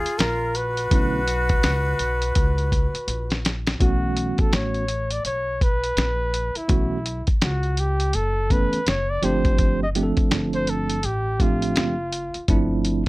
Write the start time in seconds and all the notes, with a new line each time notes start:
Already playing: F4 G#4
0.05 muted upright bass stroke, closed hi-hat
0.18 A#1 F4 A#4, snare, closed hi-hat
0.55 F#4 B4, closed hi-hat
0.77 closed hi-hat
0.91 B1 D3 A3 B3 C#4 E4, kick, closed hi-hat
1.28 closed hi-hat
1.49 kick, closed hi-hat
1.63 C#2, snare, closed hi-hat
1.99 B1, closed hi-hat
2.22 closed hi-hat
2.35 C#2, kick, closed hi-hat
2.58 closed hi-hat
2.72 kick, closed hi-hat
2.94 muted upright bass stroke, closed hi-hat
3.08 A#1, closed hi-hat
3.30 snare, closed hi-hat
3.45 snare, closed hi-hat
3.67 snare, closed hi-hat
3.80 B1 E3 A3 B3 C#4 F#4, kick, closed hi-hat
4.17 closed hi-hat
4.38 A4, muted upright bass stroke, kick, closed hi-hat
4.52 A1 C#5, snare, closed hi-hat
4.74 closed hi-hat
4.88 closed hi-hat
5.11 D5, closed hi-hat
5.25 B1 C#5, closed hi-hat
5.61 B4, kick, closed hi-hat
5.84 closed hi-hat
5.97 A#1, snare, closed hi-hat
6.34 closed hi-hat
6.55 E4, muted upright bass stroke, closed hi-hat
6.68 B1 E3 A3 B3 C#4 F#4, kick, closed hi-hat
7.06 closed hi-hat
7.27 kick, closed hi-hat
7.42 C#2 F#4, snare, closed hi-hat
7.63 closed hi-hat
7.77 G4, closed hi-hat
8.00 closed hi-hat
8.13 F#1 A4, closed hi-hat
8.50 E3 A3 B3 C#4 A4 B4, kick, closed hi-hat
8.73 muted upright bass stroke, closed hi-hat
8.87 F#1 C#5, snare, closed hi-hat
9.10 D5
9.22 G1 F3 A3 C4 D4 G4 C5, closed hi-hat
9.45 kick, closed hi-hat
9.58 kick, closed hi-hat
9.83 D#5
9.95 F3 A3 C4 D4 G4, closed hi-hat
10.03 A4
10.17 muted upright bass stroke, kick, closed hi-hat
10.31 G1, snare, closed hi-hat
10.53 C5, closed hi-hat
10.67 A4, closed hi-hat
10.90 closed hi-hat
11.03 A1 G4, closed hi-hat
11.40 F3 A3 C4 D4 F4 G4, kick, closed hi-hat
11.62 closed hi-hat
11.76 F#1, snare, closed hi-hat
12.12 closed hi-hat
12.34 muted upright bass stroke, closed hi-hat
12.48 G1 F3 A3 C4 D4 E4, kick, closed hi-hat
12.85 closed hi-hat